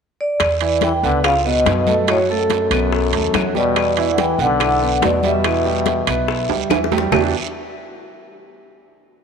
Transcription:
0.21 vibraphone D5
0.40 upright bass E2, high bongo, high conga, high timbale, long guiro, claves
0.61 grand piano E3 E4, high conga, high timbale
0.81 trombone E3, vibraphone G5, high bongo, high conga, high timbale, short guiro
1.02 upright bass C#2, trombone D3, grand piano B3 B4, vibraphone F#5, high conga, short guiro
1.23 trombone C#3, grand piano F4 F5, vibraphone F5, high bongo, high conga, high timbale, long guiro, claves
1.45 trombone B2, grand piano B3 B4, vibraphone D#5, high conga
1.66 upright bass F#2, high bongo, low bongo, high conga, high timbale, short guiro
1.87 grand piano A3 A4, high conga, short guiro
2.07 trombone A2, grand piano F#3 F#4, vibraphone C#5, high bongo, high conga, high timbale, long guiro, claves
2.29 trombone F#2, grand piano A3 A4, vibraphone A4, high bongo, high conga
2.50 high bongo, high conga, high timbale, short guiro
2.71 upright bass B1, grand piano B3 B4, high bongo, high conga, high timbale, short guiro, claves
2.92 high bongo, high conga, long guiro
3.13 upright bass D#2, grand piano A3 A4, high bongo, high conga, high timbale
3.33 upright bass E2, grand piano F#3 F#4, high bongo, low bongo, high conga, high timbale, short guiro, claves
3.55 trombone B2, grand piano G3 G4, vibraphone D5, high conga, short guiro
3.76 high bongo, high conga, high timbale, long guiro, claves
3.97 grand piano E3 E4, high conga, high timbale
4.13 trombone D3, vibraphone F#5
4.18 trombone E3, vibraphone G5, high bongo, high conga, high timbale, short guiro
4.39 upright bass B1, trombone D3, grand piano B3 B4, vibraphone F#5, high conga, short guiro
4.60 grand piano E4 E5, high bongo, high conga, high timbale, long guiro, claves
4.81 grand piano B3 B4, high conga
5.02 upright bass E2, trombone B2, vibraphone D5, high bongo, low bongo, high conga, high timbale, low timbale, short guiro
5.23 trombone B2, grand piano G3 G4, vibraphone E5, high conga, short guiro
5.44 grand piano E3 E4, high bongo, high conga, high timbale, long guiro, claves
5.65 grand piano G3 G4, high bongo, high conga
5.86 high bongo, high conga, high timbale, short guiro
6.07 upright bass B1, grand piano B3 B4, high bongo, high conga, high timbale, short guiro, claves
6.28 high bongo, high conga, long guiro
6.49 upright bass D2, grand piano G3 G4, high bongo, high conga, high timbale
6.70 upright bass E2, grand piano E3 E4, high bongo, high conga, high timbale, short guiro, claves
6.84 high bongo
6.92 grand piano G3 G4, high conga, low timbale, short guiro
6.98 low bongo
7.12 upright bass E2, grand piano E3 B3 D4 E4 F#4 G4, low bongo, low conga, low timbale, long guiro, claves

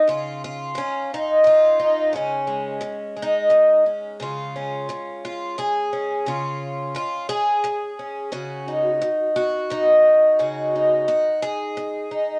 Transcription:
0.07 twelve-string acoustic guitar C#3 F4
0.44 twelve-string acoustic guitar F4
0.75 twelve-string acoustic guitar C#4, muted twelve-string acoustic guitar stroke
1.14 twelve-string acoustic guitar D#4
1.44 twelve-string acoustic guitar F4, muted twelve-string acoustic guitar stroke
1.79 twelve-string acoustic guitar D#4
2.13 twelve-string acoustic guitar C#3 C#4
2.47 twelve-string acoustic guitar G#3
2.81 muted twelve-string acoustic guitar stroke
3.16 twelve-string acoustic guitar G#3
3.22 twelve-string acoustic guitar D#4
3.50 muted twelve-string acoustic guitar stroke
3.86 twelve-string acoustic guitar C#4
4.20 twelve-string acoustic guitar C#3 F4
4.56 twelve-string acoustic guitar C#4
4.89 muted twelve-string acoustic guitar stroke
5.25 twelve-string acoustic guitar F4
5.58 twelve-string acoustic guitar G#4, muted twelve-string acoustic guitar stroke
5.93 twelve-string acoustic guitar C#4
6.26 twelve-string acoustic guitar C#3 F4
6.95 twelve-string acoustic guitar F4, muted twelve-string acoustic guitar stroke
7.29 twelve-string acoustic guitar G#4
7.64 muted twelve-string acoustic guitar stroke
7.99 twelve-string acoustic guitar C#4
8.32 twelve-string acoustic guitar C#3 F#4
8.68 twelve-string acoustic guitar D#4
9.01 muted twelve-string acoustic guitar stroke
9.36 twelve-string acoustic guitar F#4
9.70 twelve-string acoustic guitar D#4, muted twelve-string acoustic guitar stroke
10.39 twelve-string acoustic guitar C#3 F#4
10.76 twelve-string acoustic guitar D#4
11.08 twelve-string acoustic guitar F#4, muted twelve-string acoustic guitar stroke
11.42 twelve-string acoustic guitar G#4
11.77 muted twelve-string acoustic guitar stroke
12.11 twelve-string acoustic guitar D#4

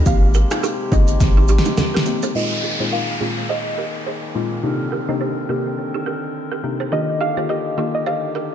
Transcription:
0.06 808-style bass G#1, harmonium C3 G#3 G4, synth pluck A#3 C4 D#4 G4 F5, kick, low conga, shaker
0.34 balafon G4 A#4, shaker
0.51 synth pluck A#3 C4 D#4 G4, balafon F4 G#4, finger snap, cross-stick, shaker
0.63 balafon D#4 G4, high bongo, shaker
0.91 808-style bass G1, synth pluck A#3 C4 D#4 G4 D#5, balafon F4 G#4, kick, high bongo, low bongo, shaker
1.08 shaker
1.20 808-style bass G#1, kick, snare, low conga, shaker
1.37 balafon D#4 G4
1.48 balafon D#4 G4, shaker
1.58 snare
1.65 low bongo, shaker
1.77 snare, high bongo, low conga, shaker
1.94 balafon G4 A#4, snare
2.06 synth pluck A#3 C4 D#4 G4, shaker
2.23 balafon G#4 C5, high bongo, shaker
2.35 synth pluck A#2 G#3 C4 D#4 F4 D#5, harmonium D#3 A#3 G#4, balafon F4 A#4, downlifter
2.63 balafon F4 G#4
2.80 synth pluck A#2 G#3 C4 D#4 F4, balafon G#4 C5
2.92 balafon F4 A#4, synth pluck F5
3.20 synth pluck A#2 G#3 C4 D#4 F4, balafon F4 G#4
3.49 balafon G#4 C5, synth pluck D#5
3.78 balafon G4 A#4
4.06 balafon G#4 C5
4.35 synth pluck A#2 G#3 C4 D#4 F4
4.63 synth pluck C3 A#3 D4 D#4 G4, harmonium D3 C4 A#4
4.92 balafon G4 A#4
5.08 synth pluck C3 A#3 D4 D#4 G4, balafon C5 D#5
5.21 balafon G4 C5
5.49 synth pluck C3 A#3 D4 D#4 G4, balafon G4 A#4
5.94 balafon D#4 G4
6.06 balafon G4 A#4
6.52 balafon G4 A#4
6.63 synth pluck C3 A#3 D4 D#4 G4
6.80 balafon G#4 C5
6.92 synth pluck D#3 A#3 D4 F4 G4 D#5, harmonium G4, balafon G4 A#4
7.21 balafon D#4 G4, synth pluck F5
7.37 synth pluck D#3 A#3 D4 F4 G4, balafon G#4 C5
7.49 balafon G4 A#4, synth pluck D#5
7.77 synth pluck D#3 A#3 D4 F4 G4, balafon D#4 G4
7.95 synth pluck D#5
8.06 balafon G4 C5, synth pluck F5
8.35 balafon G4 A#4

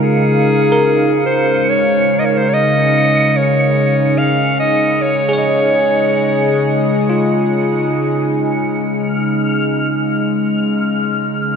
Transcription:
Already playing: ambient pad C#3 G#3 D#4 A#4 F5, tine electric piano F4, synth texture C#7
0.02 clarinet G#4
0.72 tine electric piano A#4
1.26 clarinet C5
1.69 clarinet C#5
2.19 clarinet D#5
2.25 clarinet C#5
2.37 clarinet C5
2.48 clarinet C#5
2.54 clarinet D#5
2.90 ambient pad G#4
3.36 clarinet C#5
4.18 clarinet F5
4.32 ambient pad D#5
4.60 clarinet D#5
5.02 clarinet C#5
5.29 tine electric piano G#4
5.33 tine electric piano C#5
5.38 tine electric piano D#5
7.10 tine electric piano F4
8.36 harmonium C#3 C#4, synth texture F6

